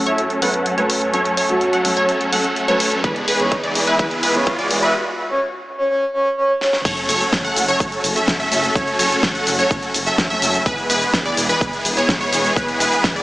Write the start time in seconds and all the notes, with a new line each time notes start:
Already playing: F#2 F#3 A3 C#4 A4 C#5, riser
0.06 F#3 A3 C#4 A4 C#5 E5, closed hi-hat
0.18 closed hi-hat
0.30 closed hi-hat
0.41 F#3 A3 C#4 A4 B4 F#5, open hi-hat
0.54 B4, closed hi-hat
0.66 closed hi-hat
0.77 F#3 A3 C#4 A4 B4 C#5, closed hi-hat
0.90 open hi-hat
1.02 closed hi-hat
1.13 F#3 A3 C#4 A4 C#5, closed hi-hat
1.25 closed hi-hat
1.37 F#3 A3 C#4 A4 C#5, open hi-hat
1.49 F#3 A3 C#4 F#4 A4, closed hi-hat
1.61 closed hi-hat
1.73 F#3 A3 C#4 A4 F#5, closed hi-hat
1.84 F#3 A3 C#4 A4, open hi-hat
1.97 F#3 A3 C#4 A4 C#5, closed hi-hat
2.09 closed hi-hat
2.21 closed hi-hat
2.32 F#3 A3 C#4 A4 F#5, open hi-hat
2.44 closed hi-hat
2.56 closed hi-hat
2.68 F#3 A3 C#4 A4 B4 C#5, closed hi-hat
2.80 open hi-hat
2.92 closed hi-hat
3.03 E2 E3 G#3 B3 G#4 B4, kick, closed hi-hat
3.16 closed hi-hat
3.28 E3 G#3 B3 G#4 B4, open hi-hat
3.39 E3 G#3 B3 G#4 C#5, closed hi-hat
3.52 kick, closed hi-hat
3.63 E3 G#3 B3 G#4 D5, closed hi-hat
3.75 E3 G#3 B3 G#4, open hi-hat
3.87 E3 G#3 B3 G#4 B4 E5, closed hi-hat
3.99 E3 G#3 B3 G#4 B4, kick, closed hi-hat
4.11 closed hi-hat
4.23 E3 G#3 B3 G#4 B4, open hi-hat
4.34 E3 G#3 B3 G#4 C#5, closed hi-hat
4.47 kick, closed hi-hat
4.59 E3 G#3 B3 G#4 D5, closed hi-hat
4.70 E3 G#3 B3 G#4, open hi-hat
4.83 E3 G#3 B3 G#4 B4 E5, closed hi-hat
5.30 C#5
5.78 C#5
5.90 C#5
6.14 C#5
6.37 C#5
6.61 C#5, snare
6.73 snare
6.85 F#1 F#3 A3 C#4 F#4 A4 C#5, kick, closed hi-hat, crash, sub drop, shaker
6.97 closed hi-hat, shaker
7.09 F#1 F#3 A3 C#4 A4 C#5, open hi-hat, shaker
7.21 closed hi-hat, shaker
7.33 F#1, kick, snare, closed hi-hat, shaker
7.45 F#3 A3 C#4 A4 F#5, closed hi-hat, shaker
7.56 F#1, open hi-hat, shaker
7.68 F#3 A3 C#4 A4 C#5, closed hi-hat, shaker
7.80 F#1, kick, closed hi-hat, shaker
7.92 closed hi-hat, shaker
8.04 F#1, open hi-hat, shaker
8.16 F#3 A3 C#4 A4 E5, closed hi-hat, shaker
8.28 F#1, kick, snare, closed hi-hat, shaker
8.40 F#3 A3 C#4 A4 E5, closed hi-hat, shaker
8.52 F#1 F#3 A3 C#4 A4 E5, open hi-hat, shaker
8.64 closed hi-hat, shaker
8.75 F#1 F#3 A3 C#4 A4 C#5, kick, closed hi-hat, shaker
8.87 closed hi-hat, shaker
8.99 F#1 F#3 A3 C#4 A4 C#5, open hi-hat, shaker
9.11 closed hi-hat, shaker
9.23 F#1, kick, snare, closed hi-hat, shaker
9.35 F#3 A3 C#4 A4 F#5, closed hi-hat, shaker
9.47 F#1, open hi-hat, shaker
9.59 F#3 A3 C#4 A4 C#5, closed hi-hat, shaker
9.71 F#1, kick, closed hi-hat, shaker
9.83 closed hi-hat, shaker
9.94 F#1, open hi-hat, shaker
10.06 F#3 A3 C#4 A4 E5, closed hi-hat, shaker
10.18 F#1, kick, snare, closed hi-hat, shaker
10.30 F#3 A3 C#4 A4 E5, closed hi-hat, shaker
10.42 F#1 F#3 A3 C#4 A4 E5, open hi-hat, shaker
10.54 closed hi-hat, shaker
10.66 E1 E3 G#3 B3 E4 G#4 B4, kick, closed hi-hat, shaker
10.78 closed hi-hat, shaker
10.90 E1 E3 G#3 B3 G#4 B4, open hi-hat, shaker
11.02 closed hi-hat, shaker
11.14 E1, kick, snare, closed hi-hat, shaker
11.25 E3 G#3 B3 G#4 D5, closed hi-hat, shaker
11.37 E1, open hi-hat, shaker
11.49 E3 G#3 B3 G#4 B4, closed hi-hat, shaker
11.61 E1, kick, closed hi-hat, shaker
11.73 closed hi-hat, shaker
11.85 E1, open hi-hat, shaker
11.97 E3 G#3 B3 G#4 C#5, closed hi-hat, shaker
12.09 E1, kick, snare, closed hi-hat, shaker
12.21 E3 G#3 B3 G#4 C#5, closed hi-hat, shaker
12.33 E1 E3 G#3 B3 G#4 C#5, open hi-hat, shaker
12.45 closed hi-hat, shaker
12.56 E1 E3 G#3 B3 G#4 B4, kick, closed hi-hat, shaker
12.68 closed hi-hat, shaker
12.80 E1 E3 G#3 B3 G#4 B4, open hi-hat, shaker
12.92 closed hi-hat, shaker
13.04 E1, kick, snare, closed hi-hat, shaker
13.16 E3 G#3 B3 G#4 D5, closed hi-hat, shaker